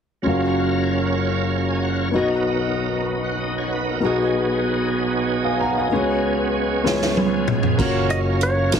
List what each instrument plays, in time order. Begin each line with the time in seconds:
0.22 grand piano F#1 F#2 C#4 F4 F#4, tonewheel organ F#3 C#4 A#4 F5
0.27 grand piano A#4 F5
1.69 tonewheel organ G#5
1.83 tonewheel organ F#5
2.01 tonewheel organ C#5
2.11 grand piano B1 B2 B3 D#4 F#4, tonewheel organ B3
2.15 tonewheel organ F#3 D#4 A#4, grand piano A#4 D#5
3.24 tonewheel organ F#5
3.40 tonewheel organ D#5
3.58 tonewheel organ C#5
3.72 tonewheel organ B4
3.89 tonewheel organ A#4
4.00 grand piano B1 B2 B3 D#4 F#4
4.04 tonewheel organ B2 F#3 B3 D#4 G#4, grand piano G#4 D#5
5.44 tonewheel organ D#5, grand piano F5 G#5
5.59 tonewheel organ F5, grand piano F#5 A#5
5.75 tonewheel organ D#5, grand piano F5 G#5
5.91 grand piano C#2 C#3 B3 C#4 F#4 G#4 C#5, tonewheel organ F3 B3 C#4 G#4
5.99 tonewheel organ F#3
6.83 grand piano C#2 C#3 B3 C#4 F4 G#4 C#5, tonewheel organ F3 B3 C#4 G#4, snare
7.02 snare
7.17 high tom
7.48 mid tom
7.63 floor tom
7.78 fingered electric bass F#1, french horn section F#3 A#3 C#4 F5, tonewheel organ F#3 C#4 F5, grand piano A#3 C#4 F4 F#4 C#5, kick, crash
7.82 tonewheel organ A#4
8.10 electric slide guitar D#5, closed hi-hat
8.41 electric slide guitar C#5, closed hi-hat
8.72 fingered electric bass A#1, grand piano A#3 C#4 F4 F#4 C#5, snare, closed hi-hat